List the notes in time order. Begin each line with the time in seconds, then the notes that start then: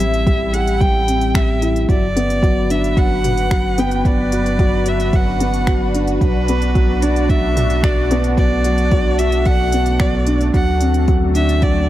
Already playing: A1 C4 E4 G4 A4 E5
0.00 G3, closed hi-hat
0.14 closed hi-hat
0.27 G3, kick, closed hi-hat
0.53 G4 F#5, closed hi-hat
0.67 closed hi-hat
0.80 G3 G5, kick, closed hi-hat
1.08 C4, closed hi-hat
1.21 closed hi-hat
1.34 G3 E5, finger snap, kick, closed hi-hat
1.62 E4, closed hi-hat
1.76 closed hi-hat
1.89 G1 F#3 D5, kick, closed hi-hat
2.02 D4 B4
2.16 B3, closed hi-hat
2.30 F#4, closed hi-hat
2.43 F#3, kick, closed hi-hat
2.70 D4 E5, closed hi-hat
2.84 closed hi-hat
2.97 F#3 F#5, kick, closed hi-hat
3.24 F#4, closed hi-hat, mid tom
3.38 closed hi-hat
3.51 F#3, finger snap, kick, closed hi-hat
3.78 B3 G5, closed hi-hat
3.91 closed hi-hat
4.05 F#3 D5, kick, closed hi-hat
4.32 F#3, closed hi-hat
4.46 closed hi-hat
4.59 F#3, kick, closed hi-hat
4.86 F#4 E5, closed hi-hat
5.00 closed hi-hat
5.13 F#3 F#5, kick, closed hi-hat
5.40 B3, closed hi-hat
5.54 closed hi-hat
5.67 F#3, finger snap, kick, closed hi-hat
5.95 D4, closed hi-hat
6.08 closed hi-hat
6.21 B1 F#3 A3 B4, kick, closed hi-hat
6.48 B3, closed hi-hat
6.62 closed hi-hat
6.75 F#3, kick, closed hi-hat
7.02 D4 D5, closed hi-hat
7.16 closed hi-hat
7.29 F#3 E5, kick, closed hi-hat
7.56 F#4, closed hi-hat, mid tom
7.70 closed hi-hat
7.83 F#4 D5, finger snap, kick, closed hi-hat
8.11 B3, closed hi-hat
8.24 closed hi-hat
8.37 F#3 D5, kick, closed hi-hat
8.64 F#3, closed hi-hat
8.78 closed hi-hat
8.91 F#3, kick, closed hi-hat
9.18 F#4 E5, closed hi-hat
9.32 closed hi-hat
9.45 F#3 F#5, kick, closed hi-hat
9.72 B3, closed hi-hat
9.86 closed hi-hat
10.00 F#3 D5, finger snap, kick, closed hi-hat
10.27 D4, closed hi-hat
10.41 closed hi-hat
10.54 D2 F#3 F#5, kick, closed hi-hat
10.81 C4, closed hi-hat
10.94 closed hi-hat
11.08 F#3, kick, closed hi-hat
11.35 D4 E5, closed hi-hat
11.41 C5
11.49 closed hi-hat
11.62 F#3 D5, kick, closed hi-hat